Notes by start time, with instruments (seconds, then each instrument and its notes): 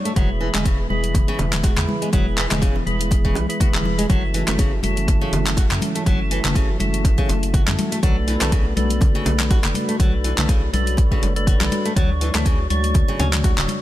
Already playing: tonewheel organ F#3 D4 C#5, analog synth pad A3 F#4 C#5
0.05 nylon-string guitar A3, closed hi-hat
0.16 analog synth bass E1, analog synth pad E3 G#3 B3 G#4, nylon-string guitar F#3, tonewheel organ G#3 E4 B4, kick, closed hi-hat, mid tom
0.41 nylon-string guitar E3
0.54 analog synth bass E1, nylon-string guitar G#3, clap, closed hi-hat, mid tom, low bongo
0.65 nylon-string guitar C#3, kick, closed hi-hat
0.90 analog synth bass E1, tonewheel organ G#3 E4 B4, high conga
1.04 closed hi-hat
1.14 kick, closed hi-hat, low bongo, low conga
1.28 nylon-string guitar C#3
1.39 analog synth bass E1, closed hi-hat, high bongo, low bongo, low conga
1.53 clap, closed hi-hat, mid tom
1.64 nylon-string guitar F#4, kick, closed hi-hat, high bongo, high conga
1.77 analog synth bass E2, clap, low conga
1.89 high conga
2.02 nylon-string guitar G#3, closed hi-hat
2.13 analog synth bass E1, nylon-string guitar F#3, tonewheel organ G#3 E4 B4, kick, closed hi-hat, mid tom
2.37 nylon-string guitar E3, clap, closed hi-hat
2.51 analog synth bass E1, nylon-string guitar G#3, clap, closed hi-hat, mid tom, low bongo, low conga
2.62 nylon-string guitar C#3, kick, closed hi-hat
2.76 low bongo
2.86 analog synth bass E1, tonewheel organ G#3 E4 B4, closed hi-hat, high conga
3.01 closed hi-hat
3.11 kick, closed hi-hat, low bongo
3.25 nylon-string guitar C#3, kick
3.35 analog synth bass B1, closed hi-hat, high bongo, low bongo, high conga
3.49 tonewheel organ G#3 E4 B4, closed hi-hat
3.60 nylon-string guitar F#4, kick, closed hi-hat, low conga
3.74 analog synth bass E1, clap, mid tom, high bongo, high conga
3.85 high conga
3.98 nylon-string guitar G#3, closed hi-hat
4.09 analog synth bass F#1, nylon-string guitar F#3, tonewheel organ F#3 E4 A4, analog synth pad A3 C#4 F#4, kick, closed hi-hat, mid tom
4.34 nylon-string guitar E3, open hi-hat
4.48 analog synth bass F#1, nylon-string guitar A3, clap, closed hi-hat, mid tom, low bongo
4.59 nylon-string guitar C#3, kick, closed hi-hat
4.83 analog synth bass F#1, tonewheel organ F#3 E4 A4, open hi-hat, high conga
4.97 closed hi-hat
5.08 kick, closed hi-hat, low bongo, low conga
5.21 nylon-string guitar C#3
5.32 analog synth bass F#1, open hi-hat, high bongo, low bongo, low conga
5.46 clap, closed hi-hat, mid tom
5.57 nylon-string guitar F#4, kick, closed hi-hat, high bongo, high conga
5.71 analog synth bass F#2, clap, low conga
5.82 open hi-hat, high conga
5.95 nylon-string guitar A3, closed hi-hat
6.06 analog synth bass F#1, tonewheel organ F#3 E4 A4, nylon-string guitar F#3, kick, closed hi-hat, mid tom
6.31 nylon-string guitar E3, open hi-hat
6.44 analog synth bass F#1, nylon-string guitar A3, clap, closed hi-hat, mid tom, low bongo, low conga
6.55 nylon-string guitar C#3, kick, closed hi-hat
6.80 analog synth bass F#1, tonewheel organ F#3 E4 A4, open hi-hat, high conga
6.94 closed hi-hat
7.05 kick, closed hi-hat, low bongo
7.18 nylon-string guitar C#3, kick
7.29 analog synth bass F#1, open hi-hat, low bongo
7.43 closed hi-hat
7.54 nylon-string guitar F#4, kick, closed hi-hat, low conga
7.67 analog synth bass F#2, clap, mid tom, high bongo, high conga
7.79 open hi-hat, high conga
7.92 nylon-string guitar A3, closed hi-hat
8.03 analog synth bass B1, nylon-string guitar F#3, tonewheel organ A3 D4 B4, analog synth pad B3, kick, closed hi-hat, mid tom
8.28 nylon-string guitar E3, open hi-hat
8.41 analog synth bass B1, nylon-string guitar A3, clap, closed hi-hat, mid tom, low bongo
8.52 nylon-string guitar C#3, kick, closed hi-hat
8.77 analog synth bass B1, tonewheel organ A3 D4 B4, open hi-hat, high conga
8.90 closed hi-hat
9.01 kick, closed hi-hat, low bongo, low conga
9.15 nylon-string guitar C#3
9.26 analog synth bass B1, open hi-hat, high bongo, low bongo, low conga
9.40 clap, closed hi-hat, mid tom
9.50 nylon-string guitar F#4, kick, closed hi-hat, high bongo, high conga
9.64 analog synth bass F#1, clap, low conga
9.75 open hi-hat, high conga
9.89 nylon-string guitar A3, closed hi-hat
10.00 analog synth bass B1, nylon-string guitar F#3, tonewheel organ A3 D4 B4, analog synth pad C#5, kick, closed hi-hat, mid tom
10.24 nylon-string guitar E3, open hi-hat
10.38 analog synth bass B1, nylon-string guitar A3, clap, closed hi-hat, mid tom, low bongo, low conga
10.49 nylon-string guitar C#3, kick, closed hi-hat
10.73 analog synth bass B1, tonewheel organ A3 D4 B4, open hi-hat, high conga
10.87 closed hi-hat
10.97 kick, closed hi-hat, low bongo
11.12 nylon-string guitar C#3, kick
11.23 analog synth bass F#1, open hi-hat, low bongo, high conga
11.36 tonewheel organ A3 D4 B4, closed hi-hat
11.47 nylon-string guitar F#4, kick, closed hi-hat, low conga
11.60 analog synth bass B1, clap, mid tom, high bongo, high conga
11.72 open hi-hat, high conga
11.85 nylon-string guitar A3, closed hi-hat
11.96 analog synth bass D2, tonewheel organ F#3 D4 C#5, nylon-string guitar F#3, analog synth pad A3, kick, closed hi-hat, mid tom
12.21 nylon-string guitar E3, open hi-hat
12.35 analog synth bass D2, nylon-string guitar A3, clap, closed hi-hat, mid tom, low bongo
12.46 nylon-string guitar C#3, kick, closed hi-hat
12.70 analog synth bass D2, tonewheel organ F#3 D4 C#5, open hi-hat, high conga
12.84 closed hi-hat
12.94 kick, closed hi-hat, low bongo, low conga
13.08 nylon-string guitar C#3
13.19 analog synth bass D2, nylon-string guitar C#4, open hi-hat, high bongo, low bongo, low conga
13.33 clap, closed hi-hat, mid tom
13.44 nylon-string guitar F#4, kick, closed hi-hat, high bongo, high conga
13.58 analog synth bass D1, clap, low conga
13.68 open hi-hat, high conga